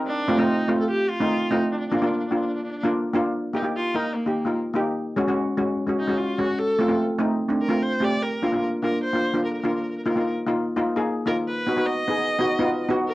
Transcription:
0.07 0.40 D4 loud
0.28 0.34 A3 medium
0.28 0.34 C4 medium
0.28 0.35 F4 medium
0.37 0.56 A3 medium
0.37 0.57 C4 medium
0.37 0.79 D#4 medium
0.37 0.57 F4 medium
0.68 0.99 A3 medium
0.68 0.99 C4 medium
0.68 1.00 F4 medium
0.80 0.89 A4 medium
0.91 1.11 G4 medium
1.10 1.52 F4 loud
1.20 1.38 A3 medium
1.20 1.38 C4 medium
1.20 1.39 D#4 medium
1.51 1.71 A3 medium
1.51 1.71 C4 medium
1.51 1.71 D#4 medium
1.51 1.72 F4 medium
1.72 1.78 D4 medium
1.79 1.86 D4 medium
1.88 1.98 A#3 medium
1.88 1.94 D4 medium
1.92 1.98 D4 medium
1.92 2.02 D4 medium
1.92 1.98 F4 medium
2.02 2.20 A#3 medium
2.02 2.20 D4 medium
2.02 2.10 D4 medium
2.02 2.21 F4 medium
2.12 2.17 D4 soft
2.18 2.24 D4 medium
2.27 2.32 D4 soft
2.31 2.62 A#3 medium
2.31 2.62 D4 medium
2.31 2.63 F4 medium
2.36 2.40 D4 medium
2.41 2.46 D4 medium
2.48 2.53 D4 soft
2.56 2.61 D4 medium
2.64 2.69 D4 medium
2.71 2.76 D4 medium
2.78 2.84 D4 medium
2.84 3.01 A#3 medium
2.84 3.02 D4 medium
2.84 3.02 F4 medium
3.14 3.34 A#3 medium
3.14 3.34 D4 medium
3.14 3.35 F4 loud
3.54 3.60 A#3 medium
3.54 3.60 D#4 medium
3.54 3.65 D#4 medium
3.54 3.60 G4 medium
3.63 3.82 A#3 medium
3.63 3.82 D#4 medium
3.63 3.83 G4 medium
3.77 3.97 F4 medium
3.94 4.13 A#3 medium
3.94 4.17 D#4 medium
3.94 4.13 D#4 medium
3.94 4.13 A#4 medium
4.16 4.56 A#3 medium
4.26 4.38 A#3 medium
4.26 4.38 D#4 medium
4.26 4.38 G4 medium
4.45 4.64 A#3 medium
4.45 4.64 D#4 medium
4.45 4.65 F4 medium
4.74 4.95 A#3 medium
4.74 4.96 D#4 medium
4.74 4.96 G4 medium
5.16 5.23 G#3 medium
5.16 5.23 C#4 medium
5.16 5.24 F#4 medium
5.27 5.46 G#3 medium
5.27 5.46 C#4 medium
5.27 5.46 F#4 medium
5.57 5.76 G#3 medium
5.57 5.76 C#4 medium
5.57 5.76 F#4 medium
5.87 6.00 G#3 medium
5.87 6.00 C#4 medium
5.87 6.01 F#4 medium
6.00 6.19 D#4 medium
6.07 6.26 G#3 medium
6.07 6.27 C#4 medium
6.07 6.27 F#4 medium
6.17 6.40 F4 medium
6.38 6.59 G#3 medium
6.38 6.59 C#4 medium
6.38 6.59 F#4 medium
6.38 6.61 F#4 medium
6.59 7.00 A4 loud
6.79 6.85 A3 medium
6.79 6.86 C4 medium
6.79 6.86 F4 medium
6.88 7.07 A3 medium
6.88 7.07 C4 medium
6.88 7.08 F4 medium
7.19 7.38 A3 medium
7.19 7.38 C4 medium
7.19 7.39 D#4 medium
7.49 7.62 A3 medium
7.49 7.62 C4 medium
7.49 7.63 D4 medium
7.62 7.84 A#4 medium
7.69 7.88 A3 medium
7.69 7.89 C4 medium
7.69 7.89 F4 medium
7.83 8.05 C5 loud
8.00 8.21 A3 medium
8.00 8.22 C4 medium
8.00 8.22 G4 medium
8.00 8.24 D5 loud
8.23 8.63 A#4 medium
8.42 8.49 A#3 medium
8.42 8.49 D4 medium
8.42 8.49 F4 medium
8.52 8.71 A#3 medium
8.52 8.71 D4 medium
8.52 8.72 F4 medium
8.83 9.01 A#3 medium
8.83 9.02 D4 medium
8.83 9.02 F4 medium
8.83 9.02 A#4 medium
9.04 9.42 C5 medium
9.13 9.26 A#3 medium
9.13 9.26 D4 medium
9.13 9.26 F4 medium
9.34 9.52 A#3 medium
9.34 9.53 D4 medium
9.34 9.53 F4 medium
9.45 9.52 A#4 medium
9.53 9.59 A#4 medium
9.61 9.84 A#3 medium
9.61 9.85 D4 medium
9.61 9.67 A#4 soft
9.65 9.85 F4 medium
9.65 9.74 A#4 soft
9.76 9.82 A#4 medium
9.82 9.89 A#4 soft
9.91 9.97 A#4 soft
9.98 10.04 A#4 soft
10.04 10.12 A#3 medium
10.04 10.12 D#4 medium
10.04 10.12 F4 medium
10.04 10.09 A#4 soft
10.10 10.18 A#4 soft
10.16 10.34 A#3 medium
10.16 10.34 D#4 medium
10.16 10.34 F4 medium
10.16 10.25 A#4 medium
10.26 10.33 A#4 soft
10.46 10.64 A#3 medium
10.46 10.65 D#4 medium
10.46 10.65 F4 medium
10.76 10.88 A#3 medium
10.76 10.89 D#4 medium
10.76 10.89 F4 medium
10.96 11.15 A#3 medium
10.96 11.15 D#4 medium
10.96 11.15 G#4 medium
11.26 11.47 A#3 medium
11.26 11.47 D#4 medium
11.26 11.47 F4 medium
11.26 11.36 A#4 loud
11.48 11.88 B4 loud
11.67 11.73 B3 medium
11.67 11.74 D#4 medium
11.67 11.74 F#4 medium
11.76 11.95 B3 medium
11.76 11.96 D#4 medium
11.76 11.96 F#4 medium
11.86 12.89 D#5 loud
12.08 12.26 B3 medium
12.08 12.27 D#4 medium
12.08 12.27 G#4 medium
12.39 12.51 B3 medium
12.39 12.51 D#4 medium
12.39 12.52 F#4 loud
12.59 12.77 B3 loud
12.59 12.77 D#4 medium
12.59 12.78 F4 medium
12.88 13.09 B3 medium
12.88 13.09 D#4 medium
12.88 13.10 F#4 loud
13.08 13.14 A#4 loud

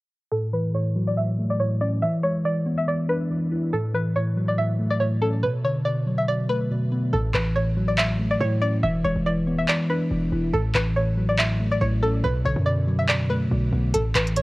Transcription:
0.32 0.73 A2 medium
0.32 0.48 A4 medium
0.53 1.60 E3 medium
0.53 0.70 B4 medium
0.75 1.16 A2 medium
0.75 1.05 C#5 medium
0.96 2.02 F#3 loud
1.07 1.15 D5 medium
1.17 1.59 A2 medium
1.17 1.48 E5 medium
1.39 2.02 A3 medium
1.50 1.58 D5 medium
1.60 2.02 A2 medium
1.60 1.76 C#5 medium
1.81 2.02 C#4 medium
1.81 1.97 D5 medium
2.02 2.44 E3 medium
2.02 2.19 E5 loud
2.23 3.30 G#3 medium
2.23 2.40 C#5 medium
2.45 2.86 E3 medium
2.45 2.76 D5 medium
2.66 3.73 B3 medium
2.78 2.85 E5 medium
2.88 3.29 E3 medium
2.88 3.04 D5 medium
3.08 3.72 D4 medium
3.08 3.69 B4 medium
3.30 3.73 E3 medium
3.51 3.73 E4 medium
3.73 4.14 A2 medium
3.73 3.89 A4 medium
3.94 5.00 E3 medium
3.94 4.10 B4 medium
4.15 4.56 A2 medium
4.15 4.46 C#5 medium
4.36 5.43 F#3 medium
4.48 4.55 D5 medium
4.57 4.99 A2 medium
4.57 4.88 E5 medium
4.79 5.43 A3 medium
4.90 4.98 D5 medium
5.00 5.43 A2 medium
5.00 5.16 C#5 medium
5.22 5.43 C#4 medium
5.22 5.38 A4 medium
5.43 5.84 B2 medium
5.43 5.59 B4 medium
5.64 6.71 D3 medium
5.64 5.81 C#5 medium
5.85 6.27 B2 medium
5.85 6.16 D5 medium
6.07 7.13 F#3 medium
6.18 6.26 E5 medium
6.28 6.69 B2 medium
6.28 6.44 D5 medium
6.49 7.13 A3 medium
6.49 7.09 B4 medium
6.71 7.13 B2 medium
6.92 7.13 B3 medium
7.13 7.33 A1 loud
7.13 7.54 A2 medium
7.13 7.29 A4 medium
7.34 8.37 A1 loud
7.34 8.41 E3 medium
7.34 7.51 B4 medium
7.34 clap medium
7.56 7.97 A2 medium
7.56 7.86 C#5 medium
7.77 8.83 F#3 loud
7.88 7.96 D5 medium
7.98 8.39 A2 medium
7.98 8.29 E5 medium
7.98 clap loud
8.19 8.83 A3 medium
8.31 8.38 D5 medium
8.41 8.83 A2 medium
8.41 8.82 A2 loud
8.41 8.57 C#5 medium
8.62 8.83 C#4 medium
8.62 8.78 D5 medium
8.83 9.04 E1 loud
8.83 9.25 E3 medium
8.83 8.99 E5 loud
9.04 9.15 E1 loud
9.04 10.11 G#3 medium
9.04 9.21 C#5 medium
9.16 9.66 E1 loud
9.26 9.67 E3 medium
9.26 9.57 D5 medium
9.47 10.53 B3 medium
9.59 9.66 E5 medium
9.68 10.10 E3 medium
9.68 9.85 D5 medium
9.68 clap loud
9.89 10.53 D4 medium
9.89 10.50 B4 medium
10.11 10.31 E1 loud
10.11 10.53 E3 medium
10.32 10.53 E1 loud
10.32 10.53 E4 medium
10.53 10.74 A1 loud
10.53 10.95 A2 medium
10.53 10.70 A4 medium
10.75 11.77 A1 loud
10.75 11.81 E3 medium
10.75 10.91 B4 medium
10.75 clap loud
10.96 11.37 A2 medium
10.96 11.27 C#5 medium
11.17 12.24 F#3 medium
11.29 11.36 D5 medium
11.38 11.80 A2 medium
11.38 11.69 E5 medium
11.38 clap loud
11.60 12.24 A3 medium
11.71 11.79 D5 medium
11.81 12.22 A1 loud
11.81 12.24 A2 medium
11.81 11.97 C#5 medium
12.02 12.24 C#4 medium
12.02 12.19 A4 medium
12.24 12.44 B1 loud
12.24 12.65 B2 medium
12.24 12.40 B4 medium
12.45 12.56 B1 loud
12.45 13.51 D3 medium
12.45 12.62 C#5 medium
12.56 13.48 F#2 loud
12.66 13.08 B2 medium
12.66 12.97 D5 medium
12.88 13.94 F#3 medium
12.99 13.07 E5 medium
13.09 13.50 B2 medium
13.09 13.25 D5 medium
13.09 clap loud
13.30 13.94 A3 medium
13.30 13.90 B4 medium
13.51 13.72 B1 loud
13.51 13.94 B2 medium
13.73 13.93 B1 loud
13.73 13.94 B3 medium
13.94 14.14 A1 loud
13.94 14.35 A2 medium
13.94 14.10 A4 medium
13.94 closed hi-hat loud
14.15 14.42 A1 loud
14.15 14.42 E3 medium
14.15 14.31 B4 medium
14.15 clap medium
14.15 closed hi-hat medium
14.27 closed hi-hat medium
14.36 14.42 A2 medium
14.36 14.42 C#5 medium
14.36 closed hi-hat medium

